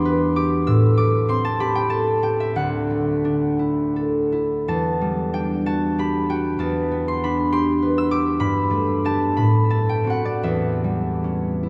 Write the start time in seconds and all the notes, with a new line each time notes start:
Already playing: E2 G3 B3 D4 G4 G5 B5 C6
0.05 B4
0.36 G4 D6
0.67 A2 E6
0.98 A3 D6
1.28 C4 C6
1.45 A5
1.60 G4 B5
1.75 G5
1.89 A4 A5
2.22 G4 G5
2.40 E5
2.56 D2 F#5
2.90 A3
3.25 D4
3.59 E4
3.96 A4
4.32 E4
4.68 E2 A5
5.01 G3
5.33 D4 G5
5.66 F#4 A5
5.98 G4 B5
6.30 F#4 G5
6.59 E2 A5
6.91 B3
7.08 C6
7.24 D4 B5
7.52 G4 C6
7.82 B4
7.98 E6
8.11 G4 D6
8.40 G2 B5
8.70 A3
9.04 D4 G4 A5
9.37 A2 B5
9.70 A3 A5
9.89 G5
10.04 C4 F#4
10.10 F#5
10.25 D5
10.43 E2 E5
10.84 G3
11.24 C#4
11.63 E4